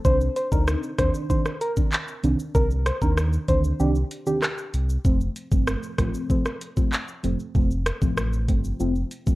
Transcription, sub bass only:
0.05 C2
0.52 D2
0.99 D#2
2.24 C2
2.55 C2
3.02 D#2
3.49 D2
3.80 C2
4.74 C2
5.05 F1
5.52 G1
5.99 A1
7.24 F1
7.55 F1
8.02 A1
8.49 G1
8.80 F1

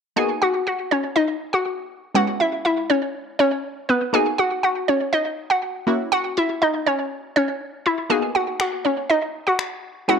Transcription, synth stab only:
0.16 A#3 B3 D#4 F#4
2.15 G#3 B3 C#4 E4
4.13 A#3 B3 D#4 F#4
5.87 A#3 C#4 E4 F#4
8.10 A#3 B3 D#4 F#4
10.08 G#3 B3 C#4 E4

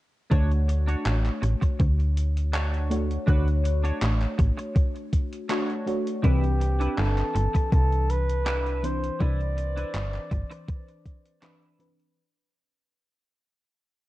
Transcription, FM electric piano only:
0.30 A3 D4 F#4 C#5
2.90 A3 D4 F#4 C#5
3.26 A3 D4 F#4 C#5
5.49 A3 D4 F#4 C#5
5.86 A3 D4 F#4 C#5
6.22 E3 C4 D4 B4
8.83 E3 C4 D4 C5
9.19 E3 C4 D4 B4
11.42 E3 C4 D4 B4
11.79 E3 C4 D4 B4

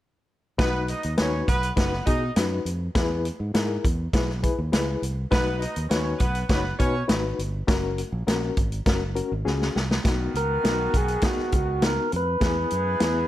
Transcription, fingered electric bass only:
0.59 B1
1.05 D#2
1.20 D#2
1.48 B1
1.77 F#1
2.07 B2
2.36 F#2
2.65 F2
2.96 E2
3.40 G#2
3.55 G#2
3.85 E2
4.13 B1
4.58 D#2
4.73 C#2
5.02 C2
5.32 B1
5.77 D#2
5.91 D#2
6.21 B1
6.50 F#1
6.80 B2
7.09 G#1
7.39 G1
7.68 F#1
8.12 A#1
8.27 A#1
8.57 G#1
8.87 F#1
9.32 G#1
9.46 C#2
9.76 C2
10.05 B1
10.34 C#2
10.65 B1
10.94 B1
11.39 muted fingered electric bass stroke
11.53 C#2
12.13 F2
12.41 E2
12.72 F#2
13.01 E2

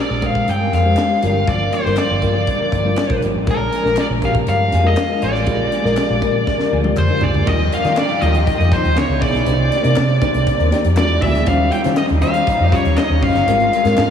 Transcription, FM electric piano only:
Already playing: G#3 D4 G4 C5
0.21 G#3 D4 G4 A#4
0.85 G#3 D4 G4 C5
1.09 G#3 D4 G4 C5
1.22 G3 D4 F4 A#4
1.85 G3 D4 F4 A#4
2.22 G3 D4 F4 A#4
2.85 G3 D4 F4 A#4
3.09 G3 D4 F4 A#4
3.46 G#3 D4 F4 A#4
3.84 G#3 D4 F4 A#4
4.22 G#3 D4 F4 G4
4.84 G#3 D4 F4 A#4
5.08 G#3 D4 F4 A#4
5.46 G#3 D4 F4 G4
5.83 G#3 D4 F4 A#4
6.21 G#3 D4 F4 A#4
6.83 G#3 D4 F4 G4
7.10 G#3 D4 F4 A#4
7.46 G3 D#4 F4 D5
7.84 G3 D#4 F4 D5
8.21 G3 D#4 F4 D#5
8.71 G3 D#4 F4 D5
8.95 B3 D#4 E4 C#5
9.20 B3 D#4 E4 G#4
9.45 A#3 D4 D#4 C5
9.83 A#3 D4 D#4 D5
10.21 A#3 D4 D#4 C5
10.71 A#3 D4 D#4 G4
10.96 G#3 E4 F#4 D5
11.22 G#3 E4 F#4 D5
11.46 G3 C#4 F4 C5
11.84 G3 C#4 F4 C5
12.21 G3 C#4 F4 C5
12.71 G3 C#4 F4 G4
13.21 G3 C#4 F4 D#5
13.47 G#3 C4 F4 A#4
13.84 G#3 C4 F4 A#4

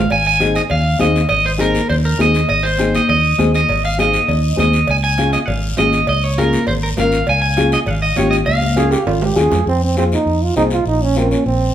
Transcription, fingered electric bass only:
0.11 G#1
0.70 D#2
1.00 D#2
1.30 G#1
1.90 D#2
2.19 D#2
2.50 G#1
3.09 D#2
3.39 D#2
3.69 G#1
4.28 D#2
4.58 D#2
4.88 C#2
5.48 G#1
5.78 G#1
6.08 C#2
6.67 G#1
6.97 G#1
7.28 C#2
7.87 G#1
8.17 G#1
8.46 C#2
9.07 G#1
9.36 D#2
9.52 F2
9.66 F2
10.26 F2
10.56 C2
10.86 A#1
11.46 A#1

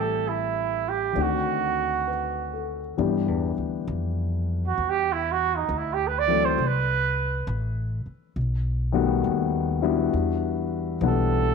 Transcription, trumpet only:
0.00 A4
0.28 E4
0.89 G4
1.22 F#4
4.67 F#4
4.90 G4
5.13 E4
5.32 F#4
5.57 D#4
5.78 E4
5.94 G4
6.07 B4
6.19 D5
6.45 C5
6.67 B4
11.08 A4

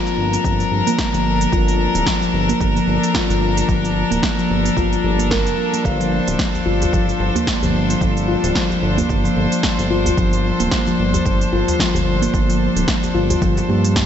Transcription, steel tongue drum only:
Already playing: F4
0.45 F3
0.60 F3
0.87 A#3
1.14 F3
1.52 F4
2.06 F3
2.22 F3
2.49 A#3
2.76 F3
3.15 F4
3.69 F3
3.84 F3
4.11 A#3
4.38 F3
4.77 F4
5.04 F3
5.19 A#3
5.31 A#4
5.73 A#3
6.00 F3
6.66 F4
6.93 F3
7.08 F3
7.35 A#3
7.63 F3
8.28 F4
8.55 F3
8.71 F3
8.98 A#3
9.25 F3
9.90 F4
10.18 F3
10.33 F3
10.60 A#3
10.87 F3
11.53 F4
11.79 F3
11.95 F3
12.22 A#3
12.49 F3
13.15 F4
13.42 F3
13.57 F3
13.69 A#3
13.84 G3

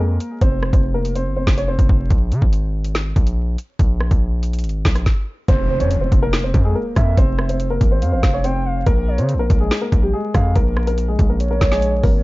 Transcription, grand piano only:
0.00 A#3 A#4
0.41 C4 C5
0.73 C4 C5
0.94 A#3 A#4
1.15 C4 C5
1.36 C4 C5
1.58 C#4 C#5
1.68 C4 C5
5.49 C4 C5
5.80 C#4 C#5
6.01 C4 C5
6.23 A#3 A#4
6.44 C4 C5
6.65 G#3 G#4
6.75 A#3 A#4
7.18 C4 C5
7.49 C4 C5
7.70 A#3 A#4
7.91 C4 C5
8.12 C4 C5
8.34 C#4 C#5
8.44 C4 C5
8.86 A#3 A#4
9.18 C4 C5
9.39 A#3 A#4
9.60 G#3 G#4
9.82 A#3 A#4
10.03 G3 G4
10.13 G#3 G#4
10.56 A#3 A#4
10.87 A#3 A#4
11.08 G#3 G#4
11.30 A#3 A#4
11.51 A#3 A#4
11.72 G#3 G#4
12.03 A#3 A#4

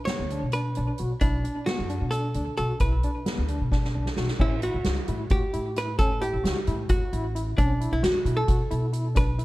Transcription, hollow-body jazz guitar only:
0.05 C#5
0.53 B4
1.21 D4
1.66 F#4
2.11 A4
2.58 A4
2.81 B4
4.41 E4
4.63 F#4
5.31 G4
5.78 B4
5.99 A4
6.22 G4
6.90 F#4
7.58 D4
7.93 E4
8.04 F#4
8.37 A4
9.17 B4

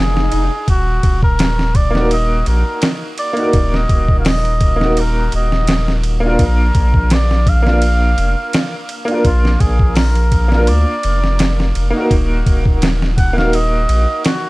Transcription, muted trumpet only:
Already playing: G#4
0.70 F#4
1.24 A#4
1.76 D5
2.13 D#5
2.48 A#4
3.19 D5
3.76 D#5
4.20 F5
4.28 D#5
5.00 A#4
5.36 D#5
6.44 A#4
7.13 D5
7.49 F5
9.26 F4
9.60 G#4
9.96 A#4
10.68 D5
13.18 F#5
13.38 F5
13.55 D#5
14.26 F#4

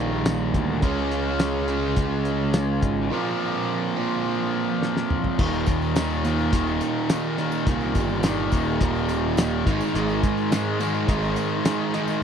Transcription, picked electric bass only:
Already playing: A#1
0.55 D2
0.83 C#2
1.97 C#2
2.83 G#1
5.39 D#1
5.68 D#2
6.53 D#1
7.67 C2
7.95 G1
8.53 D#1
8.81 D#1
9.67 G#1
9.94 G#1
10.24 G#2
11.08 G#1

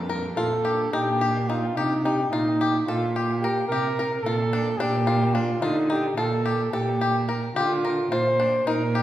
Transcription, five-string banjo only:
0.09 A#4
0.37 F4
0.65 G4
0.93 D#4
1.21 G4
1.50 D#4
1.77 G4
2.05 D#4
2.33 F4
2.61 G4
2.88 A4
3.16 G4
3.44 A#4
3.72 G4
3.99 A#4
4.26 F4
4.53 D4
4.80 D4
5.07 F4
5.35 D4
5.62 F4
5.90 D#4
6.17 F4
6.46 G4
6.73 A4
7.01 G4
7.29 A#4
7.56 G4
7.85 A#4
8.12 F4
8.40 D4
8.67 D#4
8.95 G4

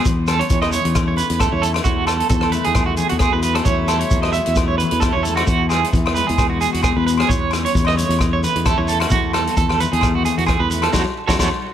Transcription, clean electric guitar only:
0.06 muted clean electric guitar stroke
0.28 A4
0.39 C#5
0.62 D#5
0.72 C#5
1.08 C#5
1.17 B4
1.40 A4
1.52 C#5
1.62 A4
1.74 muted clean electric guitar stroke
1.84 F#4
2.07 A4
2.30 A4
2.52 B4
2.65 G#4
2.86 F#4
2.97 G#4
3.09 F#4
3.19 G#4
3.33 B4
3.42 B4
3.55 A4
3.65 C#5
3.88 A4
3.99 C#5
4.22 D#5
4.33 E5
4.68 C#5
4.78 B4
5.00 A4
5.13 C#5
5.23 A4
5.36 F#4
5.47 F#4
5.69 G#4
5.92 muted clean electric guitar stroke
6.14 B4
6.27 G#4
6.50 F#4
6.61 G#4
6.73 F#4
6.83 G#4
6.96 B4
7.07 B4
7.19 G#4
7.29 C#5
7.65 C#5
7.87 D#5
7.97 C#5
8.33 C#5
8.44 B4
8.66 A4
8.78 C#5
8.88 A4
9.01 F#4
9.11 F#4
9.34 A4
9.57 A4
9.80 B4
9.92 G#4
10.15 F#4
10.25 G#4
10.38 F#4
10.46 G#4
10.60 B4
10.71 B4
10.83 A4
10.93 F#4 A4 C#5
11.27 F#4 A4 C#5
11.39 F#4 A4 C#5

